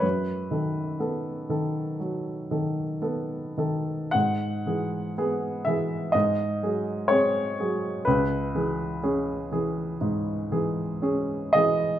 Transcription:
X:1
M:4/4
L:1/8
Q:1/4=61
K:Bmix
V:1 name="Grand piano"
B8 | f3 e d2 c2 | B6- B d |]
V:2 name="Grand piano"
F,, [D,A] [B,A] [D,A] F, [D,A] [B,A] [D,A] | G,, [E,G] [B,G] [E,G] G,, [F,G] [^B,G] [F,G] | C,, [E,G] [CG] [E,G] G,, [E,G] [CG] [E,G] |]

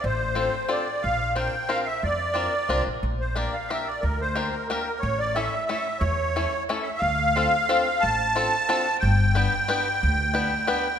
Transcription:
X:1
M:3/4
L:1/8
Q:"Swing" 1/4=180
K:Dm
V:1 name="Accordion"
c4 d2 | f2 g2 f e | d4- d z | z c d f e d |
B c2 B B2 | ^c d e2 e2 | ^c4 z e | f6 |
a6 | g6- | g6 |]
V:2 name="Five-string banjo"
z2 [CDFA] z [CDFA] z | z2 [CDFB] z [CDFB] z | z2 [CDFB] z [CDFB] z | z2 [B,DGB] z [B,DGB] z |
z2 [B,DGB] z [B,DGB] z | z2 [A,^CEA] z [A,CEA] z | z2 [A,^CEA] z [A,CEA] z | z2 [CDFA] z [CDFA] z |
z2 [CDFA] z [CDFA] z | z2 [=B,DG=B] z [B,DGB] z | z2 [=B,DG=B] z [B,DGB] z |]
V:3 name="Upright bass" clef=bass
A,,,4 z2 | B,,,4 z2 | F,,4 C,, B,,, | B,,,4 z2 |
D,,4 z2 | A,,,4 z2 | E,,4 z2 | D,,4 z2 |
A,,,4 z2 | G,,,4 z2 | D,,4 z2 |]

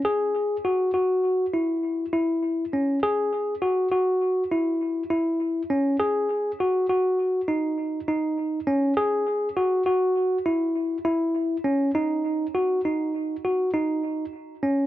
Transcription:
X:1
M:5/4
L:1/8
Q:1/4=101
K:F#dor
V:1 name="Tine electric piano"
G2 F F2 E2 E2 C | G2 F F2 E2 E2 C | G2 F F2 D2 D2 C | G2 F F2 E2 E2 C |
D2 F D2 F D2 z C |]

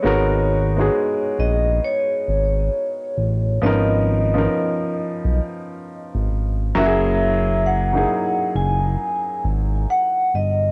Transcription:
X:1
M:4/4
L:1/16
Q:"Swing 16ths" 1/4=67
K:G#m
V:1 name="Vibraphone"
c6 d2 c8 | d8 z6 e2- | e2 f4 g4 z2 f2 d2 |]
V:2 name="Upright piano"
[G,B,DFA]2 z [G,B,DFG]4- [G,B,DFG] z8 | [^E,B,CDA]2 z [E,B,CDA]4- [E,B,CDA] z6 [F,A,C=EFG]2- | [F,A,CEFG]2 z [F,A,DEG]4- [F,A,DEG] z8 |]
V:3 name="Analog synth bass" clef=bass
G,,,4 z2 A,,,2 z2 G,,,2 z2 =A,,,2 | G,,,4 z3 B,,, z3 G,,, G,,,2 F,,,2- | F,,,4 z2 F,,,2 z2 G,,,2 z2 =G,,,2 |]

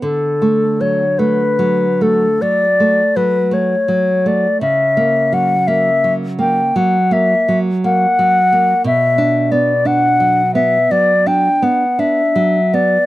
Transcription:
X:1
M:12/8
L:1/8
Q:3/8=56
K:D
V:1 name="Flute"
A2 c B2 A d2 B c2 d | e2 f e2 g f e z f3 | e2 d f2 e d g f e2 d |]
V:2 name="Nylon-string guitar"
D, A, F, A, F, A, F, A, F, A, F, A, | C, ^A, F, A, F, A, F, A, F, A, F, A, | B,, D B, D F, B, F, D B, D F, B, |]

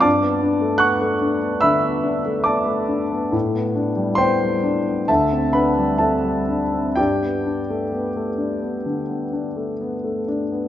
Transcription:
X:1
M:4/4
L:1/16
Q:1/4=67
K:G
V:1 name="Grand piano"
[dad']4 [f^c'f']4 [ebe']4 [dad']4 | z4 [cgc']4 [Aea]2 [Bfb]2 [Aea]4 | [Gdg]12- [Gdg]2 z2 |]
V:2 name="Grand piano"
G,, B, D A, B, A, D B, D, B, D A, B, A, D B, | A,, B, D G, B, G, D B, D,, C D G, C G, D C | G,, B, D A, B, A, D B, D, B, D A, B, A, D B, |]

